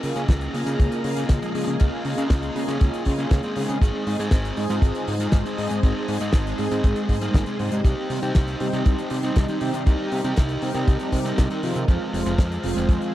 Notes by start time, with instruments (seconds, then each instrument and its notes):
Already playing: lead electric guitar A#3 C#4, string machine A#3 G#4 D#5 F5 A#5
0.03 analog synth bass C#3, analog polysynth A#3 C#4 F4 G#4, open hi-hat
0.16 analog synth bass C#3, lead electric guitar A#3 C#4, closed hi-hat
0.28 analog synth bass C#2, kick, snare, closed hi-hat
0.41 closed hi-hat
0.54 analog synth bass C#3, analog polysynth A#3 C#4 F4 G#4, open hi-hat
0.66 lead electric guitar C#3 A#3, analog synth bass C#3, closed hi-hat
0.80 analog synth bass C#2, kick, closed hi-hat
0.92 closed hi-hat
1.04 analog synth bass C#3, analog polysynth A#3 C#4 F4 G#4, open hi-hat
1.17 lead electric guitar C#3 A#3, closed hi-hat
1.29 analog synth bass C#2, kick, snare, closed hi-hat
1.42 lead electric guitar F3 G#3, closed hi-hat
1.55 analog synth bass C#3, analog polysynth A#3 C#4 F4 G#4, open hi-hat
1.67 analog synth bass C#3, closed hi-hat
1.80 analog synth bass C#2, lead electric guitar C#4 F4, string machine C6, kick, closed hi-hat
2.05 analog synth bass C#3, analog polysynth A#3 C#4 F4 G#4, open hi-hat
2.18 analog synth bass C#3, lead electric guitar C#4 F4, closed hi-hat
2.30 analog synth bass C#2, kick, snare, closed hi-hat
2.42 closed hi-hat
2.55 analog synth bass C#3, analog polysynth A#3 C#4 F4 G#4, open hi-hat
2.68 analog synth bass C#3, lead electric guitar A#3 C#4, closed hi-hat
2.81 analog synth bass C#2, kick, closed hi-hat
2.94 closed hi-hat
3.05 analog synth bass C#3, analog polysynth A#3 C#4 F4 G#4, kick, open hi-hat
3.19 lead electric guitar A#3 C#4, closed hi-hat
3.31 analog synth bass C#2, kick, snare, closed hi-hat
3.43 lead electric guitar G#3 C4, closed hi-hat
3.56 analog synth bass C#3, analog polysynth G#3 C4 D#4 G#4, open hi-hat
3.69 analog synth bass C#3, closed hi-hat
3.81 analog synth bass G#1, string machine G#3 C5 D#5 D#6, lead electric guitar C4 G#4, kick, closed hi-hat
4.07 analog synth bass G#2, analog polysynth G#3 C4 D#4 G#4, open hi-hat
4.19 analog synth bass G#2, lead electric guitar C4 G#4, closed hi-hat
4.31 analog synth bass G#1, kick, snare, closed hi-hat
4.45 closed hi-hat
4.57 analog synth bass G#2, analog polysynth G#3 C4 D#4 G#4, open hi-hat
4.70 analog synth bass G#2, lead electric guitar G#3 F4, closed hi-hat
4.82 analog synth bass G#1, kick, closed hi-hat
4.95 closed hi-hat
5.08 analog synth bass G#2, analog polysynth G#3 C4 D#4 G#4, open hi-hat
5.20 lead electric guitar G#3 F4, closed hi-hat
5.32 analog synth bass G#1, kick, snare, closed hi-hat
5.45 lead electric guitar C4 D#4, closed hi-hat
5.58 analog synth bass G#2, analog polysynth G#3 C4 D#4 G#4, open hi-hat
5.71 analog synth bass G#2, closed hi-hat
5.83 analog synth bass G#1, lead electric guitar C4 D#4, kick, closed hi-hat
6.08 analog synth bass G#2, analog polysynth G#3 C4 D#4 G#4, open hi-hat
6.21 analog synth bass G#2, lead electric guitar C4 D#4, closed hi-hat
6.33 analog synth bass G#1, kick, snare, closed hi-hat
6.47 closed hi-hat
6.58 analog synth bass G#2, analog polysynth G#3 C4 D#4 G#4, open hi-hat
6.71 analog synth bass G#2, lead electric guitar G#3 C4, closed hi-hat
6.84 analog synth bass G#1, kick, closed hi-hat
6.96 closed hi-hat
7.09 analog synth bass G#2, analog polysynth G#3 C4 D#4 G#4, kick, open hi-hat
7.21 lead electric guitar G3 A#3, analog polysynth G#3 C4 D#4 G#4, closed hi-hat
7.34 analog synth bass G#1, kick, snare, closed hi-hat
7.46 lead electric guitar C3 G#3, analog polysynth G#3 C4 D#4 G#4, closed hi-hat
7.59 analog synth bass G#2, analog polysynth G3 C4 D#4 G4, open hi-hat
7.72 analog synth bass G#2, closed hi-hat
7.85 analog synth bass C2, lead electric guitar D#4 G4, string machine D#4 G4, kick, closed hi-hat
8.10 analog synth bass C3, analog polysynth G3 C4 D#4 G4, open hi-hat
8.22 analog synth bass C3, lead electric guitar D#4 G4, closed hi-hat
8.35 analog synth bass C2, kick, snare, closed hi-hat
8.48 closed hi-hat
8.60 analog synth bass C3, analog polysynth G3 C4 D#4 G4, open hi-hat
8.73 analog synth bass C3, lead electric guitar C4 D#4, closed hi-hat
8.86 analog synth bass C2, kick, closed hi-hat
8.99 closed hi-hat
9.10 analog synth bass C3, analog polysynth G3 C4 D#4 G4, open hi-hat
9.23 lead electric guitar C4 D#4, closed hi-hat
9.36 analog synth bass C2, kick, snare, closed hi-hat
9.48 lead electric guitar D#3 C4, closed hi-hat
9.61 analog synth bass C3, analog polysynth G3 C4 D#4 G4, open hi-hat
9.74 analog synth bass C3, closed hi-hat
9.86 analog synth bass C2, lead electric guitar D#4 G4, string machine A#4, kick, closed hi-hat
10.12 analog synth bass C3, analog polysynth G3 C4 D#4 G4, open hi-hat
10.24 analog synth bass C3, lead electric guitar D#4 G4, closed hi-hat
10.37 analog synth bass C2, kick, snare, closed hi-hat
10.49 closed hi-hat
10.62 analog synth bass C3, analog polysynth G3 C4 D#4 G4, open hi-hat
10.75 analog synth bass C3, lead electric guitar C4 D#4, closed hi-hat
10.88 analog synth bass C2, kick, closed hi-hat
11.00 closed hi-hat
11.12 analog synth bass C3, analog polysynth G3 C4 D#4 G4, kick, open hi-hat
11.25 lead electric guitar C4 D#4, closed hi-hat
11.38 analog synth bass C2, kick, snare, closed hi-hat
11.50 lead electric guitar D#3 C4, closed hi-hat
11.63 analog synth bass C3, analog polysynth F3 G#3 C4 F4, open hi-hat
11.76 analog synth bass C3, closed hi-hat
11.88 analog synth bass F2, lead electric guitar G#3 F4, string machine F4 G#4 C5, kick, closed hi-hat
12.13 analog synth bass F1, analog polysynth F3 G#3 C4 F4, open hi-hat
12.26 analog synth bass F1, lead electric guitar G#3 F4, closed hi-hat
12.38 analog synth bass F2, kick, snare, closed hi-hat
12.52 closed hi-hat
12.64 analog synth bass F1, analog polysynth F3 G#3 C4 F4, open hi-hat
12.76 analog synth bass F1, lead electric guitar G#3 C4, closed hi-hat
12.89 analog synth bass F2, kick, closed hi-hat
13.01 closed hi-hat